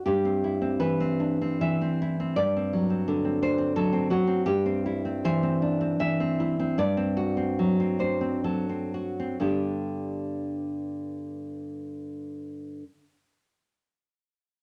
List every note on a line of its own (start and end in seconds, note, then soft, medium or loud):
0.06 2.34 G2 medium
0.06 0.77 G4 medium
0.25 0.60 C4 soft
0.44 1.63 E4 soft
0.62 0.99 C4 soft
0.80 1.60 E3 medium
0.80 1.59 B4 medium
1.00 1.40 C4 soft
1.20 2.37 D4 soft
1.41 1.80 C4 soft
1.61 2.36 E3 soft
1.61 2.33 E5 medium
1.81 2.19 C4 soft
2.02 2.37 E4 soft
2.20 2.37 C4 soft
2.36 4.41 G2 medium
2.36 3.37 D5 medium
2.57 2.89 C4 soft
2.73 3.75 F#3 soft
2.90 3.23 C4 soft
3.08 4.10 D3 soft
3.25 3.42 C4 soft
3.42 4.46 D4 soft
3.42 3.75 C5 medium
3.58 3.91 C4 soft
3.76 4.09 F#3 soft
3.76 4.09 A4 medium
3.93 4.26 C4 soft
4.10 4.46 F#3 soft
4.10 4.45 F#4 medium
4.27 4.45 C4 soft
4.46 6.73 G2 medium
4.46 4.85 G4 medium
4.66 5.04 C4 soft
4.86 5.25 E4 medium
5.05 5.42 C4 medium
5.25 5.98 E3 medium
5.25 5.97 C5 medium
5.43 5.80 C4 soft
5.62 6.76 D4 soft
5.81 6.19 C4 medium
6.00 6.77 E3 soft
6.00 6.74 E5 medium
6.20 6.58 C4 soft
6.40 6.78 E4 medium
6.59 6.78 C4 soft
6.78 9.38 G2 medium
6.78 7.95 D5 medium
6.97 7.36 C4 medium
7.17 7.99 F#4 medium
7.37 7.79 C4 soft
7.59 8.43 F#3 medium
7.80 8.20 C4 soft
7.99 9.40 D4 soft
7.99 8.42 C5 medium
8.21 8.68 C4 soft
8.44 9.40 F#3 soft
8.44 8.91 A4 medium
8.69 9.18 C4 soft
8.94 9.41 F#4 soft
9.20 9.41 C4 soft
9.40 12.82 G2 soft
9.40 12.83 D3 soft
9.40 12.83 B3 soft
9.40 12.83 D4 soft
9.40 12.84 G4 soft